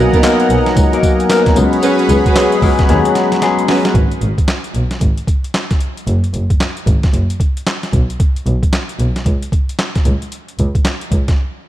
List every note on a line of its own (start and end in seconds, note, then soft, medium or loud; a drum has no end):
0.00 0.23 F#3 medium
0.00 0.10 A#3 medium
0.00 0.10 B3 medium
0.00 0.10 D#4 medium
0.00 0.11 A#4 loud
0.00 1.54 D#5 medium
0.00 1.54 F#5 medium
0.00 1.52 G#5 medium
0.00 1.52 A#5 medium
0.13 0.31 B3 medium
0.13 0.31 D#4 medium
0.13 0.32 A#4 loud
0.13 kick medium
0.13 closed hi-hat medium
0.23 0.74 F#3 medium
0.23 0.74 A#3 loud
0.23 0.75 B3 medium
0.23 0.75 D#4 medium
0.23 0.75 A#4 loud
0.23 snare loud
0.23 clap loud
0.23 closed hi-hat medium
0.23 tambourine loud
0.40 closed hi-hat medium
0.50 0.58 B1 loud
0.50 closed hi-hat medium
0.66 snare medium
0.66 closed hi-hat soft
0.76 0.84 C#2 loud
0.76 kick loud
0.76 closed hi-hat medium
0.76 tambourine medium
0.93 1.22 F#3 medium
0.93 1.22 A#3 medium
0.93 1.23 B3 medium
0.93 1.23 D#4 medium
0.93 1.23 A#4 loud
0.93 closed hi-hat medium
1.03 kick medium
1.03 closed hi-hat medium
1.03 tambourine medium
1.20 closed hi-hat medium
1.30 1.55 F#3 medium
1.30 1.56 A#3 medium
1.30 1.55 B3 medium
1.30 1.57 D#4 medium
1.30 1.57 A#4 loud
1.30 snare loud
1.30 clap medium
1.30 closed hi-hat medium
1.30 tambourine loud
1.46 kick loud
1.46 snare medium
1.46 closed hi-hat medium
1.56 1.64 C#2 loud
1.56 2.22 F#3 medium
1.56 2.22 G#3 medium
1.56 2.23 B3 medium
1.56 2.23 C#4 medium
1.56 3.93 G#4 medium
1.56 2.23 G#4 loud
1.56 3.93 C#5 medium
1.56 3.93 F#5 medium
1.56 3.93 B5 medium
1.56 closed hi-hat medium
1.56 tambourine medium
1.73 closed hi-hat medium
1.83 2.04 C#4 medium
1.83 2.04 F#4 medium
1.83 2.04 B4 loud
1.83 closed hi-hat medium
1.83 tambourine medium
1.99 closed hi-hat medium
2.09 2.17 C#2 loud
2.09 closed hi-hat medium
2.09 tambourine medium
2.26 2.44 C#4 medium
2.26 2.44 F#4 medium
2.26 2.44 B4 medium
2.26 kick medium
2.26 closed hi-hat medium
2.36 2.58 F#3 medium
2.36 2.58 G#3 medium
2.36 2.58 B3 medium
2.36 2.58 C#4 medium
2.36 2.58 G#4 loud
2.36 snare loud
2.36 clap medium
2.36 closed hi-hat medium
2.36 tambourine loud
2.52 closed hi-hat medium
2.62 2.70 C#2 loud
2.62 2.84 F#3 loud
2.62 2.84 G#3 medium
2.62 2.84 B3 medium
2.62 2.84 C#4 medium
2.62 2.85 G#4 loud
2.62 kick loud
2.62 open hi-hat medium
2.79 kick loud
2.79 snare medium
2.79 closed hi-hat soft
2.89 2.97 D#2 loud
2.89 3.32 F#3 medium
2.89 3.33 G#3 medium
2.89 3.33 B3 medium
2.89 3.33 C#4 medium
2.89 3.33 G#4 medium
2.89 snare medium
2.89 closed hi-hat medium
3.05 closed hi-hat medium
3.15 snare medium
3.15 closed hi-hat medium
3.32 snare medium
3.32 closed hi-hat medium
3.42 3.95 F#3 loud
3.42 3.95 G#3 medium
3.42 3.95 B3 medium
3.42 3.95 C#4 medium
3.42 3.96 G#4 loud
3.42 snare medium
3.42 closed hi-hat medium
3.59 closed hi-hat medium
3.68 3.90 C#4 medium
3.68 3.90 F#4 medium
3.68 3.90 B4 medium
3.68 snare loud
3.68 open hi-hat medium
3.85 snare medium
3.85 closed hi-hat medium
3.95 4.03 G#1 loud
3.95 kick loud
3.95 closed hi-hat medium
4.11 closed hi-hat soft
4.21 4.30 G#1 medium
4.21 closed hi-hat medium
4.38 kick medium
4.38 closed hi-hat medium
4.48 snare loud
4.48 clap medium
4.48 closed hi-hat medium
4.64 closed hi-hat soft
4.74 4.83 B1 medium
4.74 closed hi-hat medium
4.91 snare medium
4.91 closed hi-hat soft
5.01 5.09 G#1 medium
5.01 kick medium
5.01 closed hi-hat medium
5.17 closed hi-hat medium
5.27 kick medium
5.27 closed hi-hat medium
5.44 closed hi-hat medium
5.54 snare loud
5.54 clap medium
5.54 closed hi-hat medium
5.71 kick medium
5.71 snare medium
5.71 closed hi-hat soft
5.81 closed hi-hat medium
5.97 closed hi-hat soft
6.07 6.15 F#1 loud
6.07 closed hi-hat medium
6.24 closed hi-hat soft
6.34 6.42 F#1 medium
6.34 closed hi-hat medium
6.50 kick medium
6.50 closed hi-hat soft
6.60 snare loud
6.60 clap medium
6.60 closed hi-hat medium
6.77 closed hi-hat soft
6.87 6.95 G#1 medium
6.87 kick loud
6.87 closed hi-hat medium
7.03 kick medium
7.03 snare medium
7.03 closed hi-hat soft
7.14 7.22 F#1 medium
7.14 closed hi-hat medium
7.30 closed hi-hat medium
7.40 kick medium
7.40 closed hi-hat medium
7.57 closed hi-hat medium
7.67 snare loud
7.67 clap medium
7.67 closed hi-hat medium
7.83 snare medium
7.83 closed hi-hat soft
7.93 8.01 B1 loud
7.93 kick medium
7.93 closed hi-hat medium
8.10 closed hi-hat soft
8.20 kick loud
8.20 closed hi-hat medium
8.36 closed hi-hat soft
8.46 8.54 B1 loud
8.46 closed hi-hat medium
8.63 kick medium
8.63 closed hi-hat medium
8.73 snare loud
8.73 clap medium
8.73 closed hi-hat medium
8.89 closed hi-hat medium
8.99 9.07 B1 loud
8.99 closed hi-hat medium
9.16 snare medium
9.16 closed hi-hat soft
9.26 9.34 C#2 medium
9.26 kick medium
9.26 closed hi-hat medium
9.43 closed hi-hat medium
9.52 kick medium
9.52 closed hi-hat medium
9.69 closed hi-hat medium
9.79 snare loud
9.79 clap medium
9.79 closed hi-hat medium
9.95 kick medium
9.95 snare medium
9.95 closed hi-hat soft
10.05 10.14 C#2 medium
10.05 closed hi-hat medium
10.22 closed hi-hat soft
10.32 closed hi-hat medium
10.48 closed hi-hat soft
10.59 10.67 C#2 loud
10.59 closed hi-hat medium
10.75 kick medium
10.75 closed hi-hat soft
10.85 snare loud
10.85 clap medium
10.85 closed hi-hat medium
11.01 closed hi-hat medium
11.12 11.20 C#2 medium
11.12 kick medium
11.12 closed hi-hat medium
11.28 kick medium
11.28 snare medium
11.28 closed hi-hat soft